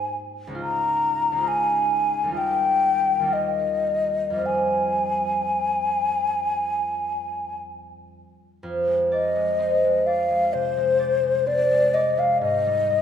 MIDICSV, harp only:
0, 0, Header, 1, 2, 480
1, 0, Start_track
1, 0, Key_signature, -4, "minor"
1, 0, Tempo, 883652
1, 330, Time_signature, 4, 2, 24, 8
1, 1292, Tempo, 964630
1, 1772, Tempo, 1090909
1, 2732, Tempo, 1038062
1, 4172, Tempo, 947867
1, 6390, End_track
2, 0, Start_track
2, 0, Title_t, "Harp"
2, 0, Program_c, 0, 46
2, 0, Note_on_c, 0, 44, 32
2, 0, Note_on_c, 0, 58, 29
2, 0, Note_on_c, 0, 63, 27
2, 0, Note_on_c, 0, 67, 30
2, 0, Note_on_c, 0, 72, 30
2, 256, Note_on_c, 0, 37, 36
2, 269, Note_on_c, 0, 56, 29
2, 277, Note_off_c, 0, 63, 0
2, 283, Note_on_c, 0, 63, 28
2, 297, Note_on_c, 0, 65, 29
2, 309, Note_off_c, 0, 44, 0
2, 318, Note_on_c, 0, 75, 27
2, 333, Note_off_c, 0, 67, 0
2, 339, Note_off_c, 0, 72, 0
2, 710, Note_off_c, 0, 37, 0
2, 717, Note_on_c, 0, 37, 38
2, 729, Note_off_c, 0, 56, 0
2, 735, Note_on_c, 0, 56, 31
2, 742, Note_off_c, 0, 63, 0
2, 749, Note_on_c, 0, 63, 30
2, 758, Note_off_c, 0, 65, 0
2, 764, Note_on_c, 0, 65, 30
2, 772, Note_off_c, 0, 75, 0
2, 778, Note_on_c, 0, 75, 30
2, 1214, Note_on_c, 0, 39, 30
2, 1228, Note_on_c, 0, 55, 26
2, 1235, Note_off_c, 0, 63, 0
2, 1241, Note_on_c, 0, 63, 27
2, 1250, Note_off_c, 0, 65, 0
2, 1257, Note_on_c, 0, 65, 24
2, 1267, Note_off_c, 0, 75, 0
2, 1269, Note_off_c, 0, 37, 0
2, 1273, Note_on_c, 0, 75, 27
2, 1278, Note_off_c, 0, 56, 0
2, 1402, Note_off_c, 0, 58, 0
2, 1693, Note_off_c, 0, 39, 0
2, 1699, Note_on_c, 0, 39, 30
2, 1703, Note_off_c, 0, 55, 0
2, 1709, Note_on_c, 0, 55, 24
2, 1721, Note_off_c, 0, 63, 0
2, 1727, Note_on_c, 0, 63, 26
2, 1734, Note_off_c, 0, 65, 0
2, 1740, Note_on_c, 0, 65, 23
2, 1746, Note_off_c, 0, 75, 0
2, 1752, Note_on_c, 0, 75, 26
2, 2194, Note_on_c, 0, 41, 25
2, 2201, Note_off_c, 0, 55, 0
2, 2206, Note_on_c, 0, 55, 22
2, 2220, Note_on_c, 0, 60, 22
2, 2224, Note_off_c, 0, 65, 0
2, 2229, Note_on_c, 0, 65, 23
2, 2237, Note_off_c, 0, 75, 0
2, 2243, Note_on_c, 0, 75, 22
2, 2248, Note_off_c, 0, 39, 0
2, 3484, Note_off_c, 0, 63, 0
2, 3970, Note_off_c, 0, 41, 0
2, 3983, Note_off_c, 0, 55, 0
2, 3998, Note_off_c, 0, 60, 0
2, 4007, Note_off_c, 0, 65, 0
2, 4021, Note_off_c, 0, 75, 0
2, 4168, Note_on_c, 0, 41, 38
2, 4290, Note_on_c, 0, 56, 30
2, 4414, Note_on_c, 0, 74, 30
2, 4530, Note_off_c, 0, 56, 0
2, 4536, Note_on_c, 0, 56, 32
2, 4653, Note_on_c, 0, 60, 36
2, 4775, Note_off_c, 0, 56, 0
2, 4781, Note_on_c, 0, 56, 32
2, 4891, Note_off_c, 0, 74, 0
2, 4897, Note_on_c, 0, 74, 32
2, 5009, Note_off_c, 0, 56, 0
2, 5015, Note_on_c, 0, 56, 33
2, 5134, Note_on_c, 0, 48, 32
2, 5246, Note_off_c, 0, 56, 0
2, 5252, Note_on_c, 0, 56, 30
2, 5357, Note_off_c, 0, 74, 0
2, 5363, Note_on_c, 0, 74, 34
2, 5479, Note_off_c, 0, 56, 0
2, 5485, Note_on_c, 0, 56, 33
2, 5596, Note_off_c, 0, 60, 0
2, 5602, Note_on_c, 0, 60, 34
2, 5720, Note_off_c, 0, 56, 0
2, 5726, Note_on_c, 0, 56, 35
2, 5840, Note_off_c, 0, 74, 0
2, 5846, Note_on_c, 0, 74, 39
2, 5955, Note_off_c, 0, 56, 0
2, 5961, Note_on_c, 0, 56, 36
2, 6083, Note_on_c, 0, 44, 45
2, 6106, Note_off_c, 0, 41, 0
2, 6107, Note_off_c, 0, 74, 0
2, 6108, Note_off_c, 0, 48, 0
2, 6208, Note_on_c, 0, 55, 38
2, 6332, Note_on_c, 0, 75, 39
2, 6390, Note_off_c, 0, 44, 0
2, 6390, Note_off_c, 0, 55, 0
2, 6390, Note_off_c, 0, 56, 0
2, 6390, Note_off_c, 0, 60, 0
2, 6390, Note_off_c, 0, 75, 0
2, 6390, End_track
0, 0, End_of_file